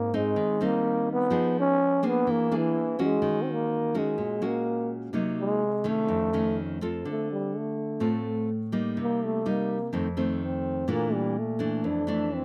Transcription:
Already playing: nylon-string guitar G#2, trombone A#3
0.14 trombone G#3, nylon-string guitar C4 D#4
0.36 nylon-string guitar D#3
0.61 nylon-string guitar G3 C4 D#4
0.65 trombone A#3
1.13 trombone B3
1.30 nylon-string guitar F3 B3 D#4 G#4
1.60 trombone C#4
2.03 nylon-string guitar A#3 D4 G#4
2.07 trombone B3
2.27 nylon-string guitar E3, trombone A#3
2.51 nylon-string guitar A#3 D4 G#4
2.56 trombone E3
2.99 nylon-string guitar G#3 C#4 F#4
3.04 trombone G#3
3.22 nylon-string guitar D#3
3.43 trombone C4
3.52 trombone A#3
3.94 nylon-string guitar G#3 C#4 F#4
3.99 trombone G#3
4.18 nylon-string guitar A#2
4.42 nylon-string guitar G#3 C#4 F#4
4.46 trombone A#3
5.13 nylon-string guitar C3 F#3 A#3 D#4
5.40 trombone G#3
5.84 nylon-string guitar D#3 A3 C#4, trombone A3
6.08 nylon-string guitar F2
6.33 nylon-string guitar D#3 A3 C#4
6.81 nylon-string guitar C4 F4 A4
7.05 nylon-string guitar D3
7.10 trombone A3
7.32 trombone G3
7.58 trombone A3
8.00 nylon-string guitar A2 A3 C4 F4
8.72 nylon-string guitar G3 A#3 D#4
8.97 nylon-string guitar C3
9.03 trombone A#3
9.24 trombone A3
9.46 nylon-string guitar G3 A#3 D#4
9.50 trombone A#3
9.93 nylon-string guitar F2 D#3 A3 C4
10.17 nylon-string guitar D#3 A3 C4
10.45 trombone C4
10.88 nylon-string guitar A#2 E3 A3 D4, trombone A#3
11.13 trombone G3
11.39 trombone A3
11.59 nylon-string guitar E3 A3 D4
11.84 nylon-string guitar F2, trombone D4
12.07 nylon-string guitar E3 A3 D4
12.34 trombone C4

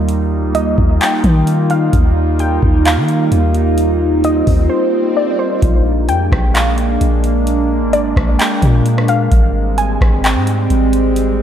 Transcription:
Already playing: 808-style bass D#2, ambient pad G3 A#3 D#4 F4
0.09 closed hi-hat
0.43 808-style bass D2
0.55 synth pluck D#5, closed hi-hat
0.78 808-style bass D#2, kick
1.01 synth pluck G5, clap, closed hi-hat
1.24 808-style bass D#3, kick, closed hi-hat
1.47 closed hi-hat
1.70 synth pluck F5, closed hi-hat
1.93 808-style bass D#2, kick, closed hi-hat
2.39 synth pluck G5, closed hi-hat
2.63 808-style bass D#2, kick
2.85 synth pluck F5, clap, closed hi-hat
2.97 808-style bass D#3
3.08 closed hi-hat
3.32 808-style bass D#2, closed hi-hat
3.54 closed hi-hat
3.78 closed hi-hat, swell
4.24 synth pluck D#5, closed hi-hat
4.47 808-style bass D#2, kick, open hi-hat
4.69 synth pluck C5
5.17 synth pluck D5
5.39 synth pluck C5
5.62 808-style bass A#1, ambient pad G#3 A#3 D4, kick, closed hi-hat
6.09 808-style bass F2, synth pluck G5, closed hi-hat
6.32 808-style bass A#1, kick, cross-stick
6.54 synth pluck F5, clap, closed hi-hat
6.78 closed hi-hat
7.01 808-style bass A#1, closed hi-hat
7.24 closed hi-hat
7.47 closed hi-hat
7.82 808-style bass G#1
7.93 synth pluck D5, closed hi-hat
8.16 808-style bass A#1, kick, cross-stick
8.39 synth pluck G5, clap, closed hi-hat
8.62 808-style bass A#2, kick, closed hi-hat
8.86 closed hi-hat
8.98 cross-stick
9.08 synth pluck F5, closed hi-hat
9.32 808-style bass G#1, ambient pad G3 G#3 C4, kick, closed hi-hat
9.78 synth pluck G#5, closed hi-hat
10.01 808-style bass G#1, kick, cross-stick
10.24 synth pluck G5, clap, closed hi-hat
10.35 808-style bass G#2
10.47 closed hi-hat
10.70 808-style bass G#1, closed hi-hat
10.93 closed hi-hat
11.16 closed hi-hat

